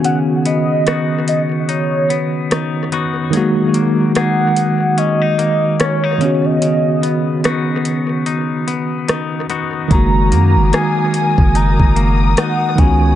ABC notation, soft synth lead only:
X:1
M:4/4
L:1/16
Q:"Swing 16ths" 1/4=73
K:F#
V:1 name="Soft synth lead"
f2 d4 d2 c4 z4 | z4 f4 d4 c3 d- | d4- d z8 z3 | a4 g2 g2 a4 f2 g2 |]